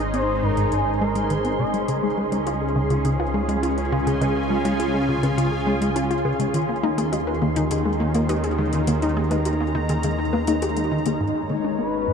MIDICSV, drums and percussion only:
0, 0, Header, 1, 2, 480
1, 0, Start_track
1, 0, Tempo, 582524
1, 1554, Time_signature, 4, 2, 24, 8
1, 9997, End_track
2, 0, Start_track
2, 0, Title_t, "Drums"
2, 113, Note_on_c, 9, 42, 62
2, 196, Note_off_c, 9, 42, 0
2, 471, Note_on_c, 9, 42, 50
2, 553, Note_off_c, 9, 42, 0
2, 593, Note_on_c, 9, 42, 62
2, 675, Note_off_c, 9, 42, 0
2, 835, Note_on_c, 9, 61, 40
2, 918, Note_off_c, 9, 61, 0
2, 952, Note_on_c, 9, 42, 50
2, 1034, Note_off_c, 9, 42, 0
2, 1073, Note_on_c, 9, 42, 60
2, 1155, Note_off_c, 9, 42, 0
2, 1192, Note_on_c, 9, 42, 35
2, 1274, Note_off_c, 9, 42, 0
2, 1433, Note_on_c, 9, 42, 51
2, 1515, Note_off_c, 9, 42, 0
2, 1552, Note_on_c, 9, 42, 61
2, 1635, Note_off_c, 9, 42, 0
2, 1793, Note_on_c, 9, 61, 39
2, 1875, Note_off_c, 9, 61, 0
2, 1913, Note_on_c, 9, 42, 48
2, 1995, Note_off_c, 9, 42, 0
2, 2033, Note_on_c, 9, 42, 60
2, 2115, Note_off_c, 9, 42, 0
2, 2392, Note_on_c, 9, 42, 49
2, 2475, Note_off_c, 9, 42, 0
2, 2512, Note_on_c, 9, 42, 60
2, 2594, Note_off_c, 9, 42, 0
2, 2633, Note_on_c, 9, 61, 39
2, 2715, Note_off_c, 9, 61, 0
2, 2875, Note_on_c, 9, 42, 50
2, 2958, Note_off_c, 9, 42, 0
2, 2993, Note_on_c, 9, 42, 59
2, 3076, Note_off_c, 9, 42, 0
2, 3112, Note_on_c, 9, 42, 33
2, 3195, Note_off_c, 9, 42, 0
2, 3354, Note_on_c, 9, 42, 50
2, 3436, Note_off_c, 9, 42, 0
2, 3473, Note_on_c, 9, 42, 57
2, 3473, Note_on_c, 9, 61, 39
2, 3556, Note_off_c, 9, 42, 0
2, 3556, Note_off_c, 9, 61, 0
2, 3832, Note_on_c, 9, 42, 47
2, 3915, Note_off_c, 9, 42, 0
2, 3953, Note_on_c, 9, 42, 59
2, 4035, Note_off_c, 9, 42, 0
2, 4312, Note_on_c, 9, 42, 47
2, 4312, Note_on_c, 9, 61, 40
2, 4394, Note_off_c, 9, 42, 0
2, 4394, Note_off_c, 9, 61, 0
2, 4435, Note_on_c, 9, 42, 61
2, 4517, Note_off_c, 9, 42, 0
2, 4793, Note_on_c, 9, 42, 49
2, 4876, Note_off_c, 9, 42, 0
2, 4910, Note_on_c, 9, 42, 59
2, 4993, Note_off_c, 9, 42, 0
2, 5032, Note_on_c, 9, 42, 32
2, 5115, Note_off_c, 9, 42, 0
2, 5151, Note_on_c, 9, 61, 41
2, 5234, Note_off_c, 9, 61, 0
2, 5271, Note_on_c, 9, 42, 49
2, 5354, Note_off_c, 9, 42, 0
2, 5390, Note_on_c, 9, 42, 58
2, 5473, Note_off_c, 9, 42, 0
2, 5753, Note_on_c, 9, 42, 48
2, 5835, Note_off_c, 9, 42, 0
2, 5873, Note_on_c, 9, 42, 58
2, 5955, Note_off_c, 9, 42, 0
2, 5992, Note_on_c, 9, 61, 42
2, 6075, Note_off_c, 9, 61, 0
2, 6231, Note_on_c, 9, 42, 49
2, 6314, Note_off_c, 9, 42, 0
2, 6352, Note_on_c, 9, 42, 59
2, 6434, Note_off_c, 9, 42, 0
2, 6711, Note_on_c, 9, 42, 49
2, 6794, Note_off_c, 9, 42, 0
2, 6833, Note_on_c, 9, 42, 57
2, 6833, Note_on_c, 9, 61, 41
2, 6916, Note_off_c, 9, 42, 0
2, 6916, Note_off_c, 9, 61, 0
2, 6953, Note_on_c, 9, 42, 32
2, 7035, Note_off_c, 9, 42, 0
2, 7191, Note_on_c, 9, 42, 49
2, 7273, Note_off_c, 9, 42, 0
2, 7312, Note_on_c, 9, 42, 58
2, 7394, Note_off_c, 9, 42, 0
2, 7434, Note_on_c, 9, 42, 34
2, 7517, Note_off_c, 9, 42, 0
2, 7671, Note_on_c, 9, 42, 47
2, 7671, Note_on_c, 9, 61, 44
2, 7753, Note_off_c, 9, 42, 0
2, 7753, Note_off_c, 9, 61, 0
2, 7790, Note_on_c, 9, 42, 59
2, 7872, Note_off_c, 9, 42, 0
2, 8150, Note_on_c, 9, 42, 47
2, 8233, Note_off_c, 9, 42, 0
2, 8267, Note_on_c, 9, 42, 60
2, 8350, Note_off_c, 9, 42, 0
2, 8510, Note_on_c, 9, 61, 43
2, 8592, Note_off_c, 9, 61, 0
2, 8630, Note_on_c, 9, 42, 50
2, 8713, Note_off_c, 9, 42, 0
2, 8752, Note_on_c, 9, 42, 58
2, 8834, Note_off_c, 9, 42, 0
2, 8871, Note_on_c, 9, 42, 34
2, 8953, Note_off_c, 9, 42, 0
2, 9110, Note_on_c, 9, 42, 50
2, 9193, Note_off_c, 9, 42, 0
2, 9997, End_track
0, 0, End_of_file